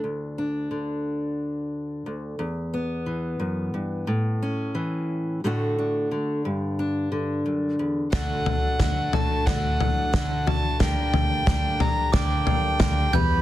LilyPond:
<<
  \new Staff \with { instrumentName = "Glockenspiel" } { \time 4/4 \key d \major \tempo 4 = 89 r1 | r1 | r1 | r1 |
r2 d'''4. g'''8 | }
  \new Staff \with { instrumentName = "Fiddle" } { \time 4/4 \key d \major r1 | r1 | r1 | fis''4. a''8 fis''4. a''8 |
g''4. bes''8 g''4. b''8 | }
  \new Staff \with { instrumentName = "Twelve-string acoustic guitar" } { \time 4/4 \key d \major r1 | r1 | r1 | <d a d' fis'>4 <d a d' fis'>8 <a d' fis'>8 <d a d' fis'>4 <d a d' fis'>4 |
<d bes d' g'>4 <d bes d' g'>8 <bes d' g'>8 <d bes d' g'>4 <d bes d' g'>8 <e, b, e g b e'>8 | }
  \new Staff \with { instrumentName = "Steel-string acoustic guitar" } { \clef bass \time 4/4 \key d \major << { r8 d'2. r8 | b2~ b8 cis'4. | <d a d' fis'>8 d'4 r8 d'2 | <d a d' fis'>8 a8 d'8 a8 d'8 a4 fis'8 |
d'8 bes8 d'8 bes8 d'8 bes4 <e g b g'>8 | } \\ { <d, d>4 d2 d,8 e,8~ | e,8 e8 fis,8 g,8 a,4 e4 | a,4 d8 g,4 d8 fis,8 e,8 | d,4 d4 a,4 r4 |
d,4 d4 d,4 d8 e,8 | } >> }
  \new Staff \with { instrumentName = "Fingered electric bass" } { \clef bass \time 4/4 \key d \major r1 | r1 | r1 | d,4 d,8 r8 d,4 d4 |
d,16 r16 d,8 d,4 d,4 d,8 e,8 | }
  \new DrumStaff \with { instrumentName = "Drums" } \drummode { \time 4/4 r4 r4 r4 r4 | r4 r4 r4 r4 | r4 r4 r4 r4 | <bd sn tomfh>8 tomfh8 <bd sn tomfh>8 tomfh8 <bd sn tomfh>8 tomfh8 <bd sn tomfh>8 tomfh8 |
<bd sn tomfh>8 tomfh8 <bd sn tomfh>8 tomfh8 <bd sn tomfh>8 tomfh8 <bd sn tomfh>8 tomfh8 | }
>>